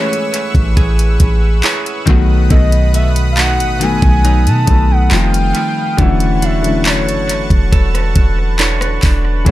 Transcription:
Already playing: E3 G#3 A3 C#4 E4 G4 G#4 B4 C#5 F#5 C#6 E6
0.13 closed hi-hat
0.34 closed hi-hat
0.55 A1, kick, closed hi-hat
0.77 A1 G#4, kick, closed hi-hat
0.99 closed hi-hat
1.20 A1, kick, closed hi-hat
1.64 E4 G#4 C#5, clap, closed hi-hat
1.86 closed hi-hat
2.06 B1 B2 D#3 F#3 A3 B3 F#5 B5 D#6, kick, closed hi-hat
2.10 F#4
2.50 B1 B2 A4 D#5, kick, closed hi-hat
2.72 closed hi-hat
2.94 A3 E5, closed hi-hat
3.16 closed hi-hat
3.32 F5
3.37 A3 D#4 F#4 F#5, clap, closed hi-hat
3.59 A1, closed hi-hat
3.79 D#3 F#3 A3 B3 G#5, closed hi-hat
3.83 A4
4.02 B1, kick, closed hi-hat
4.25 F#3 D#4, closed hi-hat
4.46 B2 A5, closed hi-hat
4.66 B1 D#3 F#3 A3 B3 A4, kick, closed hi-hat
4.91 F#5
5.10 F1 D#3 F3 G3 A3 C4 F4 F5 G5, clap, closed hi-hat
5.34 closed hi-hat
5.55 A3, closed hi-hat
5.97 E1 D3 E3 F#3 A3 C#4 E4 A4 B4 F#5 A5 C#6, kick, closed hi-hat
6.20 closed hi-hat
6.42 D4 E5, closed hi-hat
6.62 D3 F#3 A3 C#4 E4, closed hi-hat
6.85 D4 A4 C#5, clap, closed hi-hat
7.07 F#1, closed hi-hat
7.29 closed hi-hat
7.50 E1, kick, closed hi-hat
7.72 E1 A4, kick, closed hi-hat
7.95 cross-stick, closed hi-hat
8.16 E1, kick, closed hi-hat
8.59 D4 E4 A4 C#5, clap, closed hi-hat
8.81 cross-stick, closed hi-hat
9.03 E1 D4, kick, clap, open hi-hat
9.45 F#1 E3 F#3 G#3 A3 B3 C#5 F#5 B5 E6, kick, closed hi-hat

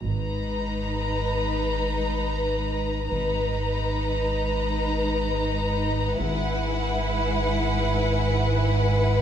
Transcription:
0.04 G#1 G#2 D#4 B4 A#5
3.12 G#1 G#2 D#4 B4 A#5
6.19 G#1 G#2 E4 B4 F#5 G#5 B5

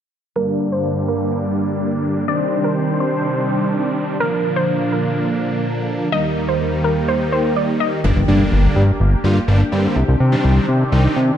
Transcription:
0.36 G2 D3 G3 A#3 D4 A#4 D5
0.72 C5
1.08 A#4
2.28 C3 D#3 G3 C4 D4 C5 D5
2.64 A#4
3.00 C5
4.20 A#2 D3 F3 A#3 D4 A#4 F5
4.56 C5
4.92 A#4
6.12 D#2 D#3 G3 A#3 D#4 G4 D#5
6.49 C5
6.84 A#4
7.08 C5
7.32 C5
7.56 D5
7.80 D#5
8.04 G1 D3 G3 A#3 D4 G4, impact
8.16 G1
8.28 G2 D3 G3 A#3 D4
8.52 G1
8.76 G2
9.00 G1
9.24 G2 D3 G3 A#3 F4
9.48 G1 D3 G3 A#3 D4
9.72 G2 D3 G3 A#3 C4
9.96 C2 C3 D#3 C4
10.08 C2
10.20 C3
10.32 D#3 G3 C4 D4
10.44 C2
10.68 C3
10.92 C2 D#3 G3 C4 D#4
11.16 C3

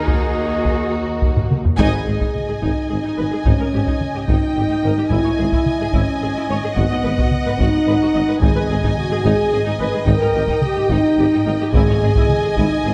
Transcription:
Already playing: D#2 D#4 G#4
0.08 A#3 F#4 D#5, taiko
0.65 F#3 A#4, taiko
0.93 F#4
1.22 taiko
1.37 taiko low-mid
1.50 F#3 A#4, taiko mid
1.65 taiko low
1.78 G#1 G#2 D#4 G#4 D#5 G#5, taiko
1.93 G#2 B4
2.06 G#1 G#2 G#4
2.20 G#2 D#4, taiko
2.35 taiko mid
2.48 G#2 G#4
2.62 G#1 G#2 D#4, taiko
2.90 G#1 G#2 G#4
3.04 G#2 D#4
3.18 G#1 G#2 B4
3.31 G#2 G#4
3.45 G#1 G#2 C#4 D#4, taiko
3.59 G#2 A#4
3.73 G#1 G#2 G4
3.87 G#2 D#4, taiko
4.01 taiko mid
4.15 G#2 G4
4.28 G#1 G#2 D#4 G5, taiko
4.55 G#1 G#2 G4
4.69 G#2 D#4
4.83 G#1 G#2 A#4
4.97 G#2 G4
5.10 G#1 G#2 E4 D#5 G#5, taiko
5.25 G#2 C#5
5.38 G#1 G#2 G#4
5.52 G#2 E4, taiko
5.66 taiko mid
5.80 G#2 G#4
5.92 G#1 G#2 C#4 E4, taiko
6.22 G#1 G#2 G#4
6.36 G#2 E4
6.49 G#1 G#2 C#5
6.63 G#2 G#4
6.76 G#1 G#2 B3 F#4 F#5, taiko
6.92 G#2 D#5
7.04 G#1 G#2 B4
7.18 G#2 F#4, taiko
7.31 taiko mid
7.46 G#2 B4
7.58 G#1 G#2 D#4 F#4, taiko
7.87 G#1 G#2 B4
8.01 G#2 F#4
8.14 G#1 G#2 D#5
8.29 G#2 B4
8.41 G#1 G#2 D#4 G#4 D#5 G#5, taiko
8.56 G#2 B4
8.70 G#1 G#2 G#4
8.83 G#2 D#4, taiko
8.96 F#4, taiko mid
9.11 G#2 G#4
9.24 G#1 G#2 D#4 G#4, taiko
9.52 G#1 G#2 G#4
9.65 G#2 D#4
9.79 G#1 G#2 B4
9.93 G#2 G#4
10.06 G#1 G#2 D#4 A#4 G5, taiko
10.21 G#2 A#4
10.35 G#1 G#2 G4
10.48 G#2 D#4, taiko
10.62 G4, taiko mid
10.76 G#2 G4
10.89 G#1 G#2 D#4, taiko
11.18 G#1 G#2 G4
11.32 G#2 D#4
11.46 G#1 G#2 D#4 A#4
11.60 G#2 G4
11.73 G#1 G#2 E4 G#4 D#5 G#5, taiko
11.89 G#2 C#5
12.02 G#1 G#2 G#4
12.16 G#2 E4, taiko
12.29 taiko mid
12.44 G#2 G#4
12.57 G#1 G#2 D#4 E4, taiko
12.85 G#1 G#2 G#4

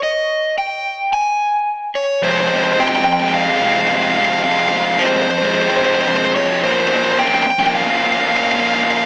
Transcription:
0.03 D#5
0.58 G5
1.13 G#5
1.95 C#5
2.22 F2 C3 F3 G#3 C4 C5
2.31 C5
2.40 C5
2.48 C3 F3 C5
2.53 G#3 C4 C5
2.64 C5
2.73 C5
2.78 F2 C3 F3 G#3 C4 G5
2.88 C4 G5
2.93 F3 G#3 G5
3.04 G5, muted distorted electric guitar stroke
3.13 G5
3.20 F3 G#3 C4 G5
3.28 G5
3.34 F5
3.41 F5
3.47 F3 G#3 C4 F5
3.57 C3 F5
3.62 F3 G#3 C4 F5
3.73 G#3 C4 F5
3.78 F3 F5
3.87 F2 C3 F3 G#3 F5
3.91 C4
3.96 F5
4.02 F5
4.10 F5
4.16 C3 F3 G#3 C4 F5
4.25 F5
4.30 F3 G#3 C4 F5
4.43 F2 C3 F3 G#3 C4 F5
4.52 F5
4.60 F5
4.68 C3 F3 F5
4.73 G#3 C4
4.77 F5
4.85 F5
4.94 F5
4.98 F2 C3 F3 G#3 C4 C5
5.06 C5
5.12 F3 G#3 C4
5.16 C5
5.22 C5
5.27 C5, muted distorted electric guitar stroke
5.38 G#3 C4 C5
5.42 F3 C5
5.55 C5
5.62 C5
5.67 F3 G#3 C4 C5
5.77 C5
5.81 C3 F3 G#3 C4
5.85 C5
5.94 F3 G#3 C4 C5
6.01 C5
6.08 F2 C3 F3 G#3 C4 C5
6.17 C5
6.25 C5
6.35 C3 F3 G#3 C4 C#5
6.49 F3 G#3 C4
6.62 A#2 F3 A#3 C#4 C5
6.71 C5
6.80 C5
6.87 A#2 C5
6.92 F3 A#3 C#4
6.96 C5
7.04 C5
7.12 C5
7.17 A#2 F3 A#3 C#4 G5
7.28 C#4 G5
7.33 F3 A#3 G5
7.43 G5, muted distorted electric guitar stroke
7.50 G5
7.59 F3 A#3 C#4 G5
7.66 G5
7.75 F5
7.84 C#4 F5
7.88 F3 A#3 F5
7.98 A#2 F3 A#3 F5
8.03 C#4 F5
8.13 F3 A#3 C#4 F5
8.21 F5
8.27 A#2 F3 A#3 C#4 F5
8.37 F5
8.44 F5
8.51 A#2 F5
8.56 F3 A#3 C#4 F5
8.67 A#3 C#4 F5
8.72 F3 F5
8.82 A#2 F3 A#3 C#4 F5
8.91 F5
8.98 F5

